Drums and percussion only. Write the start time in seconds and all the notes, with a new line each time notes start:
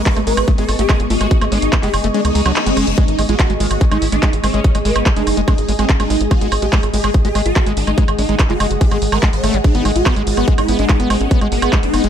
0.06 kick, clap, closed hi-hat
0.16 closed hi-hat, high woodblock
0.27 open hi-hat
0.37 closed hi-hat, high woodblock
0.48 kick, closed hi-hat
0.58 closed hi-hat
0.69 open hi-hat, high woodblock
0.79 closed hi-hat
0.89 kick, clap, closed hi-hat, high woodblock
1.00 closed hi-hat
1.10 open hi-hat
1.21 closed hi-hat, high woodblock
1.31 kick, closed hi-hat
1.41 closed hi-hat, high woodblock
1.52 open hi-hat
1.62 closed hi-hat
1.73 kick, clap, closed hi-hat, high woodblock
1.83 clap, closed hi-hat
1.94 open hi-hat, high woodblock
2.04 closed hi-hat
2.14 closed hi-hat
2.25 closed hi-hat, high woodblock
2.35 open hi-hat
2.46 closed hi-hat, high woodblock
2.56 clap, closed hi-hat
2.66 closed hi-hat
2.77 open hi-hat, high woodblock
2.87 closed hi-hat
2.98 kick, closed hi-hat
3.08 closed hi-hat
3.19 open hi-hat, high woodblock
3.29 closed hi-hat
3.39 kick, clap, closed hi-hat, high woodblock
3.50 closed hi-hat
3.60 open hi-hat
3.71 closed hi-hat, high woodblock
3.81 kick, closed hi-hat
3.91 closed hi-hat, high woodblock
4.02 open hi-hat
4.12 closed hi-hat
4.23 kick, clap, closed hi-hat, high woodblock
4.33 closed hi-hat
4.44 open hi-hat, high woodblock
4.54 closed hi-hat
4.64 kick, closed hi-hat
4.75 closed hi-hat, high woodblock
4.85 open hi-hat
4.96 closed hi-hat, high woodblock
5.06 kick, clap, closed hi-hat
5.16 closed hi-hat
5.27 open hi-hat, high woodblock
5.37 closed hi-hat
5.48 kick, closed hi-hat, high woodblock
5.58 closed hi-hat
5.69 open hi-hat
5.79 closed hi-hat, high woodblock
5.89 kick, clap, closed hi-hat
6.00 closed hi-hat, high woodblock
6.10 open hi-hat
6.21 closed hi-hat
6.31 kick, closed hi-hat, high woodblock
6.41 closed hi-hat
6.52 open hi-hat, high woodblock
6.62 closed hi-hat
6.73 kick, clap, closed hi-hat
6.83 closed hi-hat, high woodblock
6.94 open hi-hat
7.04 closed hi-hat, high woodblock
7.14 kick, closed hi-hat
7.25 closed hi-hat
7.35 open hi-hat, high woodblock
7.46 closed hi-hat
7.56 kick, clap, closed hi-hat, high woodblock
7.66 closed hi-hat
7.77 open hi-hat
7.87 closed hi-hat, high woodblock
7.98 kick, closed hi-hat
8.08 closed hi-hat, high woodblock
8.19 open hi-hat
8.29 closed hi-hat
8.39 kick, clap, closed hi-hat, high woodblock
8.50 clap, closed hi-hat
8.60 open hi-hat, high woodblock
8.71 closed hi-hat
8.81 kick, closed hi-hat
8.91 closed hi-hat, high woodblock
9.02 open hi-hat
9.12 closed hi-hat, high woodblock
9.23 kick, clap, closed hi-hat
9.33 closed hi-hat
9.44 open hi-hat, high woodblock
9.54 closed hi-hat
9.64 kick, closed hi-hat
9.75 closed hi-hat
9.85 open hi-hat, high woodblock
9.96 closed hi-hat
10.06 kick, clap, closed hi-hat, high woodblock
10.16 closed hi-hat
10.27 open hi-hat
10.37 closed hi-hat, high woodblock
10.48 kick, closed hi-hat
10.58 closed hi-hat, high woodblock
10.68 open hi-hat
10.79 closed hi-hat
10.89 kick, clap, closed hi-hat, high woodblock
11.00 closed hi-hat
11.10 open hi-hat, high woodblock
11.21 closed hi-hat
11.31 kick, closed hi-hat
11.41 closed hi-hat, high woodblock
11.52 open hi-hat
11.62 closed hi-hat, high woodblock
11.73 kick, clap, closed hi-hat
11.83 closed hi-hat
11.94 open hi-hat, high woodblock
12.04 closed hi-hat